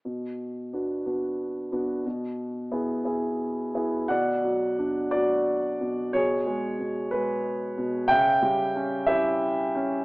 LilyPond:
<<
  \new Staff \with { instrumentName = "Grand piano" } { \time 6/8 \key e \dorian \tempo 4. = 60 r2. | r2. | <d'' fis''>4. <fis' d''>4. | <gis' cis''>4. b'4 r8 |
<e'' g''>4. <g' e''>4. | }
  \new Staff \with { instrumentName = "Grand piano" } { \time 6/8 \key e \dorian b,4 <b d' fis'>8 <b d' fis'>4 <b d' fis'>8 | b,4 <b e' gis'>8 <b e' gis'>4 <b e' gis'>8 | b,8 fis8 d'8 fis4 b,8 | b,8 gis8 b,8 gis4 b,8 |
cis8 g8 cis'8 e'4 cis'8 | }
>>